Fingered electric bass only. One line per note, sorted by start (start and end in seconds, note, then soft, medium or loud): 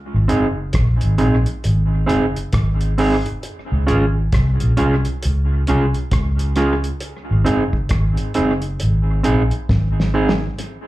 0.14 0.29 G#1 medium
0.32 0.70 F#1 medium
0.75 0.98 A#1 medium
1.03 1.18 G#1 medium
1.21 1.44 A#1 medium
1.65 2.04 G#1 loud
2.10 2.33 F#1 medium
2.54 3.32 G#1 loud
3.72 3.86 C#2 medium
3.90 4.28 G#1 medium
4.33 4.57 C2 medium
4.62 4.76 A#1 medium
4.80 5.03 C2 medium
5.25 5.63 C#2 loud
5.70 5.92 C2 medium
6.13 6.90 C#2 medium
7.31 7.45 G#1 medium
7.48 7.86 F#1 medium
7.91 8.15 G#1 medium
8.38 8.76 F#1 medium
8.83 9.21 G#1 loud
9.27 9.50 A#1 medium
9.70 10.48 G#1 medium